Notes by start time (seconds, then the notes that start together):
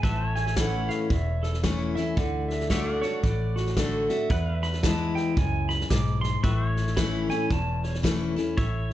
0.03 A1 A2 B4 E5 A5, kick, snare
0.28 C#5
0.35 G#5, snare
0.46 snare
0.56 E3 A3 C#4 E4 F#5, kick, snare, hi-hat pedal
0.89 F5, snare
1.10 E1 E2 E5, kick, snare
1.43 A4, snare
1.53 snare
1.63 E3 A3 C#4 E4 C#5, kick, snare, hi-hat pedal
1.95 C#4 E4 E5, snare
2.17 D2 D3 F#5, kick, snare
2.48 E5, snare
2.60 snare
2.70 D3 A3 D4 F#4 C#5 D5 E5, kick, snare, hi-hat pedal
2.91 D5
2.97 F#5
3.02 D4 F#4 C#5, snare
3.23 A1 A2 D5, kick, snare
3.56 F#4, snare
3.66 snare
3.77 D3 A3 D4 F#4 A4, kick, snare, hi-hat pedal
4.09 D4 F#4 E5, snare
4.30 E2 B4 F#5, kick, snare
4.56 E5
4.62 B5, snare
4.73 snare
4.83 E3 G#3 B3 E4 A5, kick, snare, hi-hat pedal
5.15 G5, snare
5.36 C#2 F#2 G#5, kick, snare
5.69 B5, snare
5.80 snare
5.90 B1 G#2 D6, kick, snare, hi-hat pedal
6.21 C6, snare
6.43 A1 A2 B4 E5 C#6, kick, snare
6.69 C#5
6.76 snare
6.87 snare
6.96 E3 A3 C#4 E4 B5, kick, snare, hi-hat pedal
7.29 C#4 E4 G#5, snare
7.50 E1 E2 A5, kick, snare
7.83 C#5, snare
7.94 snare
8.03 E3 A3 C#4 E4, kick, snare, hi-hat pedal
8.36 C#4 E4, snare
8.57 A1 A2 C#5 E5, kick, snare